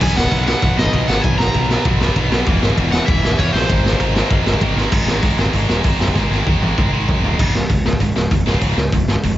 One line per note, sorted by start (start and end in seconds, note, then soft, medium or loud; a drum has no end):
0.00 0.12 B1 loud
0.00 0.16 B2 medium
0.00 0.16 F#3 loud
0.00 0.15 B3 loud
0.00 0.17 G#5 medium
0.00 kick loud
0.00 crash loud
0.16 0.27 D#1 medium
0.16 0.30 B2 medium
0.16 0.31 F#3 medium
0.16 0.31 B3 medium
0.16 0.46 F#5 medium
0.16 snare loud
0.24 kick medium
0.30 0.53 B1 medium
0.30 0.47 B2 medium
0.30 0.46 F#3 medium
0.30 0.46 B3 loud
0.30 kick loud
0.30 ride medium
0.47 0.60 B2 medium
0.47 0.61 F#3 medium
0.47 0.62 B3 medium
0.47 0.76 F#5 loud
0.47 snare loud
0.62 0.73 B1 medium
0.62 0.76 B2 medium
0.62 0.76 F#3 loud
0.62 0.76 B3 loud
0.62 kick loud
0.62 ride medium
0.77 0.88 B1 medium
0.77 0.92 B2 medium
0.77 0.93 F#3 medium
0.77 0.93 B3 loud
0.77 1.07 D#5 medium
0.77 snare loud
0.86 kick medium
0.93 1.04 B1 loud
0.93 1.08 B2 medium
0.93 1.08 F#3 medium
0.93 1.08 B3 medium
0.93 kick loud
0.93 ride medium
1.08 1.19 G#1 medium
1.08 1.22 B2 medium
1.08 1.23 F#3 loud
1.08 1.24 B3 medium
1.08 1.22 F#5 medium
1.08 snare loud
1.22 1.34 B1 medium
1.22 1.39 B2 loud
1.22 1.39 F#3 loud
1.22 1.39 B3 loud
1.22 1.38 G#5 loud
1.22 kick loud
1.22 ride medium
1.38 1.50 B1 medium
1.38 1.53 B2 medium
1.38 1.53 F#3 medium
1.38 1.54 B3 medium
1.38 2.27 A#5 loud
1.38 snare loud
1.47 kick medium
1.54 1.76 B1 medium
1.54 1.70 B2 medium
1.54 1.70 F#3 medium
1.54 1.69 B3 medium
1.54 kick loud
1.54 ride medium
1.71 1.84 B2 medium
1.71 1.85 F#3 medium
1.71 1.85 B3 medium
1.71 snare loud
1.85 2.06 B1 loud
1.85 2.00 B2 medium
1.85 2.00 F#3 loud
1.85 2.00 B3 loud
1.85 kick loud
1.85 ride medium
2.01 2.15 B2 medium
2.01 2.16 F#3 medium
2.01 2.16 B3 loud
2.01 snare loud
2.08 kick medium
2.16 2.26 B1 medium
2.16 2.31 B2 medium
2.16 2.30 F#3 medium
2.16 2.30 B3 medium
2.16 kick loud
2.16 ride medium
2.30 2.41 B1 medium
2.30 2.45 B2 medium
2.30 2.46 F#3 loud
2.30 2.45 B3 medium
2.30 snare loud
2.46 2.57 E1 medium
2.46 2.61 E2 loud
2.46 2.61 B2 medium
2.46 2.60 E3 loud
2.46 kick loud
2.46 ride medium
2.61 2.72 G#1 loud
2.61 2.76 E2 medium
2.61 2.76 B2 medium
2.61 2.77 E3 loud
2.61 snare loud
2.70 kick medium
2.77 2.99 E1 medium
2.77 2.92 E2 medium
2.77 2.91 B2 medium
2.77 2.91 E3 medium
2.77 kick loud
2.77 ride medium
2.92 3.06 E2 medium
2.92 3.07 B2 medium
2.92 3.07 E3 medium
2.92 3.06 F#5 loud
2.92 snare loud
3.06 3.19 E1 loud
3.06 3.22 E2 medium
3.06 3.22 B2 loud
3.06 3.22 E3 loud
3.06 3.39 E5 loud
3.06 kick loud
3.06 ride medium
3.23 3.34 E1 medium
3.23 3.37 E2 medium
3.23 3.38 B2 loud
3.23 3.38 E3 loud
3.23 snare loud
3.31 kick medium
3.38 3.54 E2 medium
3.38 3.49 E2 medium
3.38 3.53 B2 medium
3.38 3.53 E3 medium
3.38 3.53 C#5 medium
3.38 kick loud
3.38 ride medium
3.53 3.64 A#1 loud
3.53 3.69 E2 medium
3.53 3.69 B2 medium
3.53 3.68 E3 medium
3.53 4.57 C5 medium
3.53 snare loud
3.69 3.80 G#1 loud
3.69 3.84 G#2 medium
3.69 3.83 D#3 loud
3.69 3.83 G#3 loud
3.69 kick loud
3.69 ride medium
3.83 3.94 G#1 medium
3.83 3.98 G#2 medium
3.83 3.98 D#3 medium
3.83 3.99 G#3 loud
3.83 snare loud
3.92 kick medium
3.99 4.21 G#1 medium
3.99 4.15 G#2 medium
3.99 4.14 D#3 medium
3.99 4.13 G#3 medium
3.99 kick loud
3.99 ride medium
4.15 4.29 G#2 medium
4.15 4.30 D#3 medium
4.15 4.30 G#3 medium
4.15 snare loud
4.30 4.52 G#1 medium
4.30 4.45 G#2 loud
4.30 4.45 D#3 medium
4.30 4.44 G#3 loud
4.30 kick loud
4.30 ride medium
4.45 4.59 G#2 medium
4.45 4.60 D#3 loud
4.45 4.60 G#3 loud
4.45 snare loud
4.54 kick medium
4.60 4.72 G#1 medium
4.60 4.76 G#2 medium
4.60 4.75 D#3 medium
4.60 4.75 G#3 medium
4.60 kick loud
4.60 ride medium
4.76 4.87 G#1 medium
4.76 4.90 G#2 medium
4.76 4.90 D#3 loud
4.76 4.90 G#3 loud
4.76 snare medium
4.91 5.03 G#1 medium
4.91 5.06 G#2 medium
4.91 5.06 D#3 loud
4.91 5.06 G#3 loud
4.91 kick loud
4.91 crash loud
5.06 5.18 G#1 medium
5.06 5.22 G#2 medium
5.06 5.22 D#3 medium
5.06 5.23 G#3 loud
5.06 snare loud
5.22 5.33 G#1 medium
5.22 5.37 G#2 medium
5.22 5.37 D#3 medium
5.22 5.37 G#3 loud
5.22 kick loud
5.22 open hi-hat medium
5.37 5.49 G#1 medium
5.37 5.52 G#2 medium
5.37 5.52 D#3 medium
5.37 5.54 G#3 medium
5.37 snare loud
5.46 kick medium
5.53 5.64 G#1 medium
5.53 5.68 G#2 medium
5.53 5.68 D#3 medium
5.53 5.68 G#3 loud
5.53 kick loud
5.53 open hi-hat medium
5.68 5.79 D#1 medium
5.68 5.83 G#2 loud
5.68 5.84 D#3 loud
5.68 5.85 G#3 loud
5.68 snare loud
5.84 5.95 G#1 medium
5.84 6.00 G#2 medium
5.84 5.99 D#3 medium
5.84 5.99 G#3 medium
5.84 kick loud
5.84 open hi-hat medium
6.00 6.11 F#2 medium
6.00 6.14 G#2 medium
6.00 6.14 D#3 medium
6.00 6.15 G#3 medium
6.00 snare loud
6.08 kick medium
6.15 6.26 G#1 medium
6.15 6.31 G#2 medium
6.15 6.30 D#3 loud
6.15 6.30 G#3 loud
6.15 kick loud
6.15 snare medium
6.30 6.41 G#1 medium
6.30 6.45 G#2 medium
6.30 6.46 D#3 medium
6.30 6.46 G#3 medium
6.30 snare medium
6.46 6.57 D#2 medium
6.46 6.61 G#2 medium
6.46 6.61 D#3 loud
6.46 6.60 G#3 medium
6.46 kick loud
6.61 6.72 G#1 medium
6.61 6.76 G#2 medium
6.61 6.77 D#3 medium
6.61 6.77 G#3 medium
6.61 high tom medium
6.78 6.88 G#1 medium
6.78 6.93 G#2 medium
6.78 6.92 D#3 medium
6.78 6.92 G#3 medium
6.78 kick loud
6.78 mid tom medium
6.92 7.03 G#1 medium
6.92 7.07 G#2 medium
6.92 7.08 D#3 loud
6.92 7.08 G#3 loud
7.08 7.19 F#2 medium
7.08 7.24 G#2 medium
7.08 7.24 D#3 medium
7.08 7.23 G#3 medium
7.08 kick loud
7.08 floor tom medium
7.23 7.34 D#1 medium
7.23 7.38 G#2 medium
7.23 7.38 D#3 medium
7.23 7.38 G#3 medium
7.23 floor tom medium
7.39 7.49 C#1 medium
7.39 7.53 C#2 medium
7.39 7.54 G#2 medium
7.39 7.54 C#3 medium
7.39 kick loud
7.39 crash loud
7.53 7.64 C#1 medium
7.53 7.68 C#2 medium
7.53 7.68 G#2 medium
7.53 snare loud
7.69 7.80 C#1 medium
7.69 7.83 C#2 medium
7.69 7.83 G#2 medium
7.69 kick loud
7.69 open hi-hat medium
7.85 7.95 C#1 medium
7.85 7.99 C#2 medium
7.85 7.99 G#2 medium
7.85 snare loud
7.93 kick medium
8.00 8.11 C#1 medium
8.00 8.14 C#2 medium
8.00 8.14 G#2 medium
8.00 kick loud
8.00 open hi-hat medium
8.15 8.26 C#1 medium
8.15 8.29 C#2 medium
8.15 8.30 G#2 medium
8.15 snare loud
8.31 8.41 F1 medium
8.31 8.45 C#2 medium
8.31 8.45 G#2 medium
8.31 kick loud
8.31 open hi-hat medium
8.46 8.57 C#1 medium
8.46 8.61 C#2 medium
8.46 8.61 G#2 loud
8.46 8.61 C#3 loud
8.46 snare loud
8.54 kick medium
8.61 8.72 C#1 medium
8.61 8.76 C#2 medium
8.61 8.77 G#2 medium
8.61 8.77 C#3 loud
8.61 kick loud
8.61 open hi-hat medium
8.77 8.87 C#2 medium
8.77 8.91 C#2 medium
8.77 8.92 G#2 medium
8.77 snare loud
8.92 9.03 C#1 medium
8.92 9.07 C#2 medium
8.92 9.07 G#2 medium
8.92 kick loud
8.92 open hi-hat medium
9.07 9.18 G#1 medium
9.07 9.22 C#2 medium
9.07 9.23 G#2 medium
9.07 snare loud
9.16 kick medium
9.23 9.34 F1 medium
9.23 9.38 C#2 medium
9.23 9.38 G#2 medium
9.23 kick loud
9.23 open hi-hat medium